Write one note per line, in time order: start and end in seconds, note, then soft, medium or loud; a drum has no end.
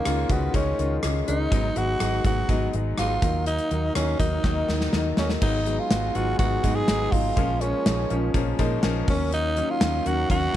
0.00 0.06 D#3 medium
0.00 0.06 G#3 medium
0.00 0.33 A#3 medium
0.00 0.06 C#4 medium
0.00 0.55 D#4 medium
0.05 0.23 C#2 medium
0.05 0.21 D#3 medium
0.05 0.21 G#3 medium
0.05 0.21 C#4 medium
0.05 0.21 F4 medium
0.05 cross-stick loud
0.05 closed hi-hat medium
0.30 0.47 C#2 loud
0.30 0.45 D#3 medium
0.30 0.45 G#3 medium
0.30 0.55 B3 medium
0.30 0.45 C#4 medium
0.30 0.46 F#4 medium
0.30 kick medium
0.30 closed hi-hat medium
0.53 0.72 C#2 medium
0.53 0.69 D#3 medium
0.53 0.69 G#3 medium
0.53 0.70 C#4 medium
0.53 0.98 C#4 medium
0.53 0.70 D#4 loud
0.53 kick medium
0.53 closed hi-hat medium
0.78 0.96 C#2 medium
0.78 0.94 D#3 medium
0.78 0.94 G#3 medium
0.78 0.94 C#4 medium
0.78 0.94 F4 medium
0.78 closed hi-hat medium
1.03 1.21 C#2 medium
1.03 1.18 D#3 medium
1.03 1.18 G#3 medium
1.03 1.18 C#4 medium
1.03 1.19 D#4 medium
1.03 cross-stick loud
1.03 closed hi-hat medium
1.27 1.45 C#2 medium
1.27 1.43 D#3 medium
1.27 1.43 G#3 medium
1.27 1.43 C#4 medium
1.27 1.78 D#4 medium
1.27 1.43 D#4 medium
1.27 closed hi-hat medium
1.51 1.69 G#1 medium
1.51 1.66 F#3 medium
1.51 1.67 G#3 medium
1.51 1.67 B3 medium
1.51 1.67 D#4 loud
1.51 kick loud
1.51 closed hi-hat medium
1.75 1.94 G#1 medium
1.75 1.91 F#3 medium
1.75 1.91 G#3 medium
1.75 1.92 B3 medium
1.75 1.92 D#4 medium
1.75 2.25 F#4 loud
1.75 closed hi-hat medium
2.00 2.18 G#1 medium
2.00 2.16 F#3 medium
2.00 2.16 G#3 medium
2.00 2.16 B3 medium
2.00 2.16 D#4 medium
2.00 cross-stick loud
2.00 closed hi-hat medium
2.25 2.42 G#1 medium
2.25 2.40 F#3 medium
2.25 2.40 G#3 medium
2.25 2.40 B3 medium
2.25 2.41 D#4 medium
2.25 2.71 F#4 medium
2.25 kick medium
2.25 closed hi-hat medium
2.49 2.67 G#1 medium
2.49 2.64 F#3 medium
2.49 2.65 G#3 medium
2.49 2.65 B3 medium
2.49 2.65 D#4 loud
2.49 kick medium
2.49 closed hi-hat medium
2.73 2.91 G#1 medium
2.73 2.89 F#3 medium
2.73 2.89 G#3 medium
2.73 2.89 B3 medium
2.73 2.90 D#4 medium
2.73 closed hi-hat medium
2.98 3.16 G#1 medium
2.98 3.13 F#3 medium
2.98 3.13 G#3 medium
2.98 3.13 B3 medium
2.98 3.14 D#4 medium
2.98 3.44 F4 medium
2.98 cross-stick loud
2.98 closed hi-hat medium
3.22 3.58 D#2 medium
3.22 3.61 D#3 medium
3.22 3.62 F#3 medium
3.22 3.62 A#3 medium
3.22 3.62 D#4 medium
3.22 kick loud
3.22 closed hi-hat medium
3.46 3.92 D#4 medium
3.46 closed hi-hat medium
3.58 closed hi-hat soft
3.70 3.89 D#2 medium
3.70 3.86 D#3 medium
3.70 3.86 F#3 medium
3.70 3.86 A#3 medium
3.70 3.87 D#4 medium
3.70 closed hi-hat medium
3.94 4.13 D#2 medium
3.94 4.10 D#3 medium
3.94 4.11 F#3 medium
3.94 4.11 A#3 medium
3.94 4.18 C#4 medium
3.94 4.11 D#4 medium
3.94 cross-stick loud
3.94 closed hi-hat medium
4.19 4.37 D#2 medium
4.19 4.35 D#3 medium
4.19 4.35 F#3 medium
4.19 4.35 A#3 medium
4.19 5.13 D#4 medium
4.19 4.35 D#4 medium
4.19 kick medium
4.19 closed hi-hat medium
4.43 4.62 D#2 medium
4.43 4.59 D#3 medium
4.43 4.59 F#3 medium
4.43 4.59 A#3 medium
4.43 4.60 D#4 loud
4.43 kick medium
4.43 snare soft
4.68 4.86 D#2 medium
4.68 4.83 D#3 medium
4.68 4.84 F#3 medium
4.68 4.84 A#3 medium
4.68 4.84 D#4 medium
4.68 snare medium
4.81 snare medium
4.92 5.11 D#2 medium
4.92 5.08 D#3 medium
4.92 5.08 F#3 medium
4.92 5.09 A#3 medium
4.92 5.09 D#4 medium
4.92 snare medium
5.17 5.35 D#2 medium
5.17 5.32 D#3 medium
5.17 5.33 F#3 medium
5.17 5.33 A#3 medium
5.17 5.29 C#4 medium
5.17 5.33 D#4 medium
5.17 snare medium
5.29 snare medium
5.41 5.77 G#1 medium
5.41 5.57 F#3 medium
5.41 5.57 G#3 medium
5.41 5.57 B3 medium
5.41 5.80 D#4 medium
5.41 7.35 D#4 medium
5.41 5.57 D#4 loud
5.41 7.35 G#4 medium
5.41 7.35 B4 medium
5.41 7.35 G#5 medium
5.41 kick loud
5.41 crash medium
5.66 5.81 F#3 medium
5.66 5.81 G#3 medium
5.66 5.82 B3 medium
5.66 5.82 D#4 medium
5.66 closed hi-hat medium
5.79 6.16 F4 medium
5.90 6.08 G#1 medium
5.90 6.06 F#3 medium
5.90 6.06 G#3 medium
5.90 6.06 B3 medium
5.90 6.06 F#4 medium
5.90 snare loud
5.90 closed hi-hat medium
6.15 6.33 G#1 medium
6.15 6.30 F#3 medium
6.15 6.30 G#3 medium
6.15 6.31 B3 medium
6.15 6.31 F4 medium
6.15 6.38 F#4 medium
6.15 closed hi-hat medium
6.39 6.57 G#1 medium
6.39 6.54 F#3 medium
6.39 6.55 G#3 medium
6.39 6.55 B3 medium
6.39 6.55 D#4 medium
6.39 6.77 F#4 loud
6.39 kick medium
6.39 closed hi-hat medium
6.63 6.82 G#2 medium
6.63 6.79 F#3 medium
6.63 6.79 G#3 medium
6.63 6.79 B3 medium
6.63 6.79 D#4 loud
6.63 kick medium
6.63 closed hi-hat medium
6.75 7.13 G#4 loud
6.87 7.06 G#1 medium
6.87 7.03 F#3 medium
6.87 7.03 G#3 medium
6.87 7.04 B3 medium
6.87 7.04 D#4 medium
6.87 snare loud
6.87 closed hi-hat medium
7.12 7.30 G#1 medium
7.12 7.28 F#3 medium
7.12 7.28 G#3 medium
7.12 7.28 B3 medium
7.12 7.28 D#4 medium
7.12 7.62 F4 loud
7.12 kick medium
7.12 open hi-hat medium
7.36 7.72 A#1 medium
7.36 7.52 F3 medium
7.36 7.52 G#3 medium
7.36 7.52 A#3 medium
7.36 7.53 C#4 loud
7.36 9.06 F4 medium
7.36 10.56 A#4 medium
7.36 10.56 C#5 medium
7.36 9.06 G#5 medium
7.36 kick loud
7.36 closed hi-hat medium
7.61 7.77 F3 medium
7.61 7.77 G#3 medium
7.61 7.77 A#3 medium
7.61 8.34 C#4 medium
7.61 7.77 C#4 medium
7.61 closed hi-hat medium
7.86 8.04 A#1 medium
7.86 8.01 F3 medium
7.86 8.01 G#3 medium
7.86 8.01 A#3 medium
7.86 8.02 D#4 medium
7.86 snare loud
7.86 closed hi-hat medium
8.10 8.28 A#1 loud
8.10 8.25 F3 medium
8.10 8.25 G#3 medium
8.10 8.26 A#3 medium
8.10 8.26 C#4 medium
8.10 closed hi-hat medium
8.34 8.52 A#1 medium
8.34 8.50 F3 medium
8.34 8.50 G#3 medium
8.34 8.50 A#3 medium
8.34 8.50 C#4 medium
8.34 kick medium
8.34 closed hi-hat medium
8.59 8.77 A#2 medium
8.59 8.74 F3 loud
8.59 8.74 G#3 loud
8.59 8.75 A#3 loud
8.59 8.75 D#4 loud
8.59 kick medium
8.59 closed hi-hat medium
8.83 9.01 A#1 medium
8.83 8.99 F3 loud
8.83 8.99 G#3 loud
8.83 8.99 A#3 loud
8.83 8.99 C#4 loud
8.83 snare loud
8.83 closed hi-hat medium
9.07 9.61 D#2 loud
9.07 9.47 D#3 medium
9.07 9.47 F#3 medium
9.07 9.47 A#3 medium
9.07 9.47 C#4 medium
9.07 9.31 C#4 medium
9.07 10.56 D#4 medium
9.07 10.56 D#5 medium
9.07 kick loud
9.07 open hi-hat medium
9.32 9.72 D#4 loud
9.32 closed hi-hat medium
9.57 9.72 D#3 medium
9.57 9.72 F#3 medium
9.57 9.72 A#3 medium
9.57 9.72 C#4 medium
9.57 closed hi-hat medium
9.70 10.08 F4 loud
9.81 9.99 D#2 medium
9.81 9.96 D#3 medium
9.81 9.96 F#3 medium
9.81 9.96 A#3 medium
9.81 9.97 C#4 medium
9.81 snare loud
9.81 closed hi-hat medium
10.05 10.23 D#2 medium
10.05 10.20 D#3 medium
10.05 10.21 F#3 medium
10.05 10.21 A#3 medium
10.05 10.21 C#4 medium
10.05 10.30 F#4 loud
10.05 closed hi-hat medium
10.29 10.47 D#2 loud
10.29 10.45 D#3 medium
10.29 10.45 F#3 medium
10.29 10.45 A#3 medium
10.29 10.45 C#4 medium
10.29 10.56 F#4 loud
10.29 kick medium
10.29 closed hi-hat medium
10.53 10.56 D#3 medium